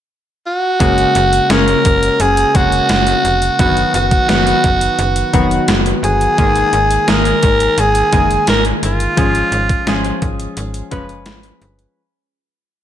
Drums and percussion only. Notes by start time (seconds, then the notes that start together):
0.80 kick, closed hi-hat
0.98 closed hi-hat
1.15 closed hi-hat
1.33 closed hi-hat
1.50 snare, closed hi-hat
1.68 closed hi-hat
1.85 kick, closed hi-hat
2.03 closed hi-hat
2.20 closed hi-hat
2.37 closed hi-hat
2.55 kick, closed hi-hat
2.72 closed hi-hat
2.89 snare, closed hi-hat
3.07 closed hi-hat
3.25 closed hi-hat
3.42 closed hi-hat
3.59 kick, closed hi-hat
3.77 closed hi-hat
3.94 closed hi-hat
4.11 kick, closed hi-hat
4.29 snare, closed hi-hat
4.47 closed hi-hat
4.64 kick, closed hi-hat
4.81 closed hi-hat
4.99 closed hi-hat
5.16 closed hi-hat
5.34 kick, closed hi-hat
5.51 closed hi-hat
5.68 snare, closed hi-hat
5.86 closed hi-hat
6.04 closed hi-hat
6.21 closed hi-hat
6.38 kick, closed hi-hat
6.56 closed hi-hat
6.73 closed hi-hat
6.91 closed hi-hat
7.08 snare, closed hi-hat
7.25 closed hi-hat
7.43 kick, closed hi-hat
7.60 closed hi-hat
7.78 closed hi-hat
7.95 closed hi-hat
8.13 kick, closed hi-hat
8.31 closed hi-hat
8.47 snare, closed hi-hat
8.65 closed hi-hat
8.83 closed hi-hat
9.00 closed hi-hat
9.17 kick, closed hi-hat
9.35 closed hi-hat
9.52 closed hi-hat
9.69 kick, closed hi-hat
9.87 snare, closed hi-hat
10.05 closed hi-hat
10.22 kick, closed hi-hat
10.40 closed hi-hat
10.57 closed hi-hat
10.74 closed hi-hat
10.91 kick, closed hi-hat
11.09 closed hi-hat
11.26 snare, closed hi-hat
11.43 closed hi-hat
11.62 closed hi-hat
11.79 closed hi-hat